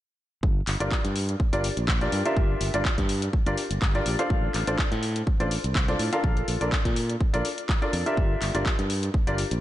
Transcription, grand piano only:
0.80 0.91 D4 medium
0.80 0.91 F4 medium
0.80 0.91 G4 medium
0.80 0.91 A#4 medium
0.80 0.91 D5 medium
1.53 1.64 D4 medium
1.53 1.64 F4 medium
1.53 1.64 G4 medium
1.53 1.64 A#4 medium
1.53 1.64 D5 medium
2.01 2.20 D4 medium
2.01 2.20 F4 medium
2.01 2.20 G4 medium
2.01 2.20 A#4 medium
2.01 2.20 D5 medium
2.25 2.71 D4 medium
2.25 2.71 F4 medium
2.25 2.71 G4 medium
2.25 2.71 A#4 medium
2.25 2.71 E5 medium
2.74 2.85 D4 medium
2.74 2.85 F4 medium
2.74 2.85 G4 medium
2.74 2.85 A#4 medium
2.74 2.85 D5 medium
3.46 3.57 D4 medium
3.46 3.57 F4 medium
3.46 3.57 G4 medium
3.46 3.57 A#4 medium
3.46 3.57 D5 medium
3.95 4.13 D4 medium
3.95 4.13 F4 medium
3.95 4.13 G4 medium
3.95 4.13 A#4 medium
3.95 4.13 D5 medium
4.19 4.64 D4 medium
4.19 4.64 F4 medium
4.19 4.64 A4 medium
4.19 4.64 C5 medium
4.19 4.64 F5 medium
4.68 4.78 D4 medium
4.68 4.78 F4 medium
4.68 4.78 A4 medium
4.68 4.78 C5 medium
4.68 4.78 D5 medium
5.40 5.51 D4 medium
5.40 5.51 F4 medium
5.40 5.51 A4 medium
5.40 5.51 C5 medium
5.40 5.51 D5 medium
5.88 6.07 D4 medium
5.88 6.07 F4 medium
5.88 6.07 A4 medium
5.88 6.07 C5 medium
5.88 6.07 D5 medium
6.13 6.58 D4 medium
6.13 6.58 F4 medium
6.13 6.58 A4 medium
6.13 6.58 A#4 medium
6.13 6.58 F5 medium
6.61 6.72 D4 medium
6.61 6.72 F4 medium
6.61 6.72 A4 medium
6.61 6.72 A#4 medium
6.61 6.72 D5 medium
7.34 7.44 D4 medium
7.34 7.44 F4 medium
7.34 7.44 A4 medium
7.34 7.44 A#4 medium
7.34 7.44 D5 medium
7.82 8.00 D4 medium
7.82 8.00 F4 medium
7.82 8.00 A4 medium
7.82 8.00 A#4 medium
7.82 8.00 D5 medium
8.06 8.51 D4 medium
8.06 8.51 F4 medium
8.06 8.51 G4 medium
8.06 8.51 A#4 medium
8.06 8.51 E5 medium
8.55 8.65 D4 medium
8.55 8.65 F4 medium
8.55 8.65 G4 medium
8.55 8.65 A#4 medium
8.55 8.65 D5 medium
9.27 9.38 D4 medium
9.27 9.38 F4 medium
9.27 9.38 G4 medium
9.27 9.38 A#4 medium
9.27 9.38 D5 medium

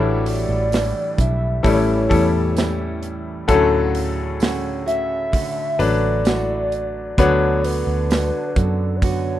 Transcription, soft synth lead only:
0.00 0.30 C#5 medium
0.29 1.19 D5 loud
1.21 1.68 E5 loud
1.66 3.04 C#5 medium
4.87 5.82 E5 loud
5.81 7.20 D5 loud
7.19 7.66 C#5 loud
7.64 8.60 B4 loud
8.58 8.98 A4 medium
8.96 9.06 D5 medium
9.04 9.39 C#5 loud

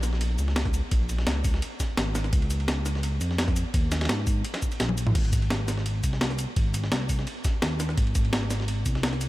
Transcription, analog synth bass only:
0.00 0.37 A#1 loud
0.39 0.82 C#2 medium
0.92 1.26 A#1 loud
1.27 1.61 C#2 medium
1.97 2.31 G#1 medium
2.33 3.20 C#2 medium
3.21 3.64 F2 medium
3.74 4.08 D#2 loud
4.10 4.43 G#2 medium
4.80 5.14 A#1 medium
5.15 6.02 G#1 loud
6.04 6.47 C2 medium
6.56 6.90 G#1 loud
6.92 7.26 C2 medium
7.62 7.96 D#2 loud
7.98 8.84 G#1 loud
8.86 9.29 C2 medium

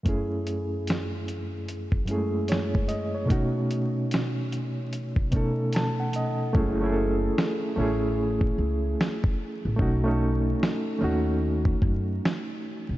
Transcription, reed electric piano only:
0.03 1.26 F#2 medium
0.03 1.27 A3 medium
0.03 1.28 C#4 medium
0.07 1.28 E4 medium
0.07 1.29 G#4 medium
2.05 3.01 F#2 medium
2.05 2.16 G#3 medium
2.05 3.02 C#4 medium
2.10 3.05 A3 medium
2.10 3.03 E4 medium
2.10 3.03 G#4 medium
2.49 2.88 C#5 medium
2.88 3.13 D#5 medium
3.15 3.53 C#5 medium
3.25 4.49 B2 medium
3.25 4.50 A3 medium
3.25 4.51 C#4 medium
3.30 4.51 D#4 medium
3.30 4.52 F#4 medium
5.31 6.26 B2 medium
5.31 6.26 A3 medium
5.31 6.27 C#4 medium
5.35 6.28 D#4 medium
5.35 6.28 A4 medium
5.75 5.98 A5 medium
6.00 6.13 F#5 medium
6.16 6.53 D#5 medium
6.53 6.73 A3 medium
6.53 6.74 C#4 medium
6.53 6.75 E4 medium
6.59 6.76 G#4 medium
6.80 7.55 A3 medium
6.80 7.56 C#4 medium
6.80 7.56 E4 medium
6.86 6.88 G#4 medium
6.92 7.61 A4 medium
7.76 8.97 A3 medium
7.76 8.98 C#4 medium
7.76 8.99 E4 medium
7.81 9.00 G#4 medium
9.76 9.97 A3 medium
9.76 9.98 C#4 medium
9.76 9.99 D#4 medium
9.82 10.00 F#4 medium
10.04 10.78 A3 medium
10.04 10.79 C#4 medium
10.04 10.80 D#4 medium
10.09 10.81 A4 medium
10.99 12.21 A3 medium
10.99 12.22 C#4 medium
10.99 12.23 D#4 medium
11.04 12.24 F#4 medium

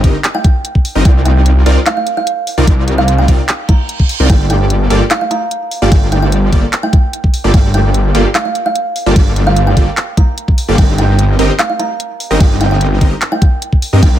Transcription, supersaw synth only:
0.04 0.17 C4 medium
0.04 0.17 D#4 medium
0.04 0.17 G4 medium
0.04 0.17 A#4 medium
0.04 0.17 D#5 medium
0.95 1.03 C4 medium
0.95 1.03 D#4 medium
0.95 1.03 G4 medium
0.95 1.03 A#4 medium
0.95 1.03 D#5 medium
1.05 1.64 D#4 medium
1.05 1.64 F4 medium
1.05 1.64 D5 medium
1.66 1.79 C4 medium
1.66 1.79 D#4 medium
1.66 1.79 F4 medium
1.66 1.79 A#4 medium
1.66 1.79 D5 medium
2.58 2.65 C4 medium
2.58 2.65 D#4 medium
2.58 2.65 F4 medium
2.58 2.65 A#4 medium
2.58 2.65 D5 loud
2.67 3.26 D#4 medium
2.67 3.26 D5 medium
3.28 3.41 C4 medium
3.28 3.41 D#4 medium
3.28 3.41 F4 medium
3.28 3.41 A#4 medium
3.28 3.41 D5 medium
4.20 4.27 C4 medium
4.20 4.27 D#4 medium
4.20 4.27 F4 medium
4.20 4.27 A#4 medium
4.20 4.27 D5 medium
4.30 4.88 A#3 medium
4.30 4.88 F4 medium
4.30 4.88 G4 medium
4.30 4.88 A4 medium
4.30 4.88 D5 medium
4.90 5.03 A#3 medium
4.90 5.03 F4 medium
4.90 5.03 G4 medium
4.90 5.03 A4 medium
4.90 5.03 D5 medium
5.82 5.89 A#3 medium
5.82 5.89 F4 medium
5.82 5.89 G4 medium
5.82 5.89 A4 medium
5.82 5.89 D5 medium
6.53 6.66 A#3 medium
6.53 6.66 F4 medium
6.53 6.66 G4 medium
6.53 6.66 A4 medium
6.53 6.66 D5 medium
7.44 7.52 A#3 medium
7.44 7.52 F4 medium
7.44 7.52 G4 medium
7.44 7.52 A4 medium
7.44 7.52 D5 loud
7.54 8.12 A#3 medium
7.54 8.12 F4 medium
8.15 8.28 A#3 medium
8.15 8.28 F4 medium
8.15 8.28 G4 medium
8.15 8.28 A4 medium
8.15 8.28 D5 medium
9.06 9.14 A#3 medium
9.06 9.14 F4 medium
9.06 9.14 G4 medium
9.06 9.14 A4 medium
9.06 9.14 D5 loud
9.16 9.75 A#3 medium
9.16 9.75 G4 medium
9.16 9.75 D5 medium
9.77 9.90 A#3 medium
9.77 9.90 F4 medium
9.77 9.90 G4 medium
9.77 9.90 A4 medium
9.77 9.90 D5 medium
10.69 10.76 A#3 medium
10.69 10.76 F4 medium
10.69 10.76 G4 medium
10.69 10.76 A4 medium
10.69 10.76 D5 loud
10.78 11.37 G4 medium
11.39 11.52 C4 medium
11.39 11.52 D#4 medium
11.39 11.52 G4 medium
11.39 11.52 A#4 medium
11.39 11.52 D#5 medium
12.31 12.38 C4 medium
12.31 12.38 D#4 medium
12.31 12.38 G4 medium
12.31 12.38 A#4 medium
12.31 12.38 D#5 loud
13.01 13.14 C4 medium
13.01 13.14 D#4 medium
13.01 13.14 G4 medium
13.01 13.14 A#4 medium
13.01 13.14 D#5 medium
13.93 14.00 C4 medium
13.93 14.00 D#4 medium
13.93 14.00 G4 medium
13.93 14.00 A#4 medium
13.93 14.00 D#5 loud
14.03 14.19 C4 medium
14.03 14.19 D#4 medium
14.03 14.19 A#4 medium
14.03 14.19 D5 medium

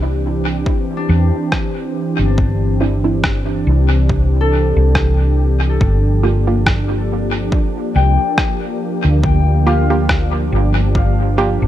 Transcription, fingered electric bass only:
0.00 0.63 C2 medium
1.09 1.30 E2 medium
2.19 3.63 G1 medium
3.67 4.72 C2 medium
4.76 5.77 C2 medium
5.81 7.49 G1 medium
7.96 8.16 C2 medium
9.05 10.49 D2 medium
10.52 11.57 G1 medium
11.62 11.68 G1 medium

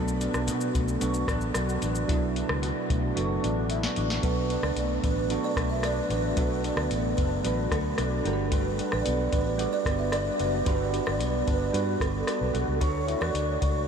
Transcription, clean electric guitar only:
0.00 2.08 B2 medium
0.00 0.74 A3 medium
0.00 0.20 D4 medium
0.00 0.47 F#4 medium
0.21 1.28 D4 medium
0.47 1.01 F#4 medium
0.74 2.89 A3 medium
1.01 1.55 F#4 medium
1.28 1.82 D4 medium
1.56 2.62 F#4 medium
1.83 2.36 D4 medium
2.09 4.22 B2 medium
2.36 3.43 D4 medium
2.62 3.16 F#4 medium
2.90 4.77 A3 medium
3.16 3.70 F#4 medium
3.43 3.97 D4 medium
3.70 3.84 E4 medium
3.84 4.23 F#4 medium
3.97 4.50 D4 medium
4.23 6.36 B2 medium
4.23 5.31 F#4 medium
4.51 5.04 D4 medium
4.77 5.56 A3 medium
5.04 5.83 D4 medium
5.31 6.10 F#4 medium
5.57 6.89 A3 medium
5.84 6.64 D4 medium
6.10 6.37 F#4 medium
6.37 8.30 B2 medium
6.37 7.44 F#4 medium
6.64 7.17 D4 medium
6.91 7.70 A3 medium
7.17 7.97 D4 medium
7.45 8.51 F#4 medium
7.72 8.30 A3 medium
7.98 8.78 D4 medium
8.24 8.50 G3 medium
8.51 10.65 G3 medium
8.51 9.58 F#4 medium
8.78 9.32 D4 medium
9.05 9.84 B3 medium
9.32 10.12 D4 medium
9.58 10.39 F#4 medium
9.85 11.18 B3 medium
10.12 10.92 D4 medium
10.39 10.67 F#4 medium
10.67 12.81 G3 medium
10.67 11.73 F#4 medium
10.93 11.46 D4 medium
11.19 12.00 B3 medium
11.46 12.27 D4 medium
11.73 12.53 F#4 medium
12.01 12.87 B3 medium
12.27 13.10 D4 medium
12.54 13.07 F#4 medium
12.81 13.86 C#5 medium
13.07 13.20 E4 medium
13.20 13.60 F#4 soft
13.33 13.88 D4 medium
13.61 13.88 F#4 medium

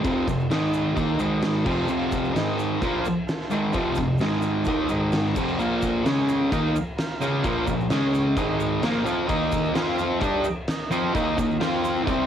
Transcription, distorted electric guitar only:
0.03 0.26 F2 medium
0.03 0.26 C3 medium
0.03 0.27 F3 loud
0.27 0.46 F2 medium
0.27 0.46 C3 medium
0.50 0.96 G#2 medium
0.50 0.93 D#3 medium
0.50 0.95 G#3 medium
0.94 1.18 D#3 medium
0.94 1.19 A#3 loud
0.94 1.19 D#4 loud
1.19 1.65 G#2 medium
1.19 1.65 D#3 loud
1.19 1.65 G#3 loud
1.65 1.87 F2 medium
1.65 1.87 C3 medium
1.65 1.88 F3 medium
1.88 2.35 F2 loud
1.88 2.35 C3 loud
1.88 2.36 F3 loud
2.35 2.81 G#2 medium
2.35 2.81 D#3 medium
2.35 2.81 G#3 medium
2.82 3.04 A#2 loud
2.82 3.05 F3 loud
2.82 3.05 A#3 loud
3.50 3.73 G#2 medium
3.50 3.74 D#3 medium
3.50 3.74 G#3 medium
3.73 3.96 F2 loud
3.73 3.97 C3 loud
3.73 3.97 F3 loud
3.98 4.16 F2 medium
3.98 4.16 C3 medium
4.20 4.66 G#2 medium
4.20 4.66 D#3 medium
4.20 4.67 G#3 medium
4.67 4.89 D#3 loud
4.67 4.90 A#3 medium
4.67 4.90 D#4 loud
4.90 5.35 G#2 medium
4.90 5.36 D#3 loud
4.90 5.36 G#3 loud
5.36 5.59 F2 medium
5.36 5.59 C3 loud
5.36 5.59 F3 loud
5.59 6.05 A#2 medium
5.59 6.05 F3 loud
5.59 6.05 A#3 loud
6.06 6.51 C#3 medium
6.06 6.51 G#3 medium
6.06 6.52 C#4 loud
6.51 6.74 D#3 medium
6.51 6.74 A#3 medium
6.51 6.75 D#4 loud
7.21 7.44 C#3 medium
7.21 7.44 G#3 loud
7.21 7.44 C#4 loud
7.44 7.66 A#2 medium
7.44 7.67 F3 loud
7.44 7.67 A#3 loud
7.67 7.86 A#2 medium
7.67 7.86 F3 medium
7.90 8.36 C#3 medium
7.90 8.36 G#3 medium
7.90 8.37 C#4 loud
8.37 8.82 G#2 loud
8.37 8.82 D#3 loud
8.37 8.83 G#3 loud
8.82 9.04 A#2 loud
8.82 9.03 F3 loud
8.82 9.06 A#3 loud
9.05 9.27 F3 loud
9.05 9.28 C4 loud
9.05 9.29 F4 loud
9.28 9.74 D#3 medium
9.28 9.74 A#3 loud
9.28 9.75 D#4 loud
9.74 10.21 F3 loud
9.74 10.20 C4 medium
9.74 10.21 F4 loud
10.21 10.44 G3 loud
10.21 10.44 D4 medium
10.21 10.45 G4 loud
10.91 11.14 F3 medium
10.91 11.14 C4 loud
10.91 11.14 F4 loud
11.14 11.37 D#3 loud
11.14 11.37 A#3 loud
11.14 11.37 D#4 loud
11.38 11.56 D#3 medium
11.38 11.56 A#3 medium
11.60 12.08 F3 loud
11.60 12.09 C4 loud
11.60 12.09 F4 medium
12.08 12.26 C3 medium
12.08 12.26 G3 loud
12.08 12.26 C4 loud

